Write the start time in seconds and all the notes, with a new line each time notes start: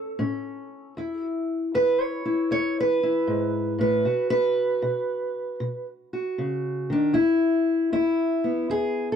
Already playing: A2 C#4 A4
0.19 A2 C#4
0.97 E2 E4
1.74 E2 B4
2.01 C#5
2.25 E4
2.51 E2 C#5
2.80 B4
3.03 E4
3.27 G#2
3.79 A2 B4
4.05 B2 F#4
4.30 B4
4.82 B2
5.60 B2
6.13 F#4
6.38 C#3
6.90 D#3 D4
7.13 E2 E4
7.92 E2 E4
8.44 B3
8.70 E2 G#4
9.12 A4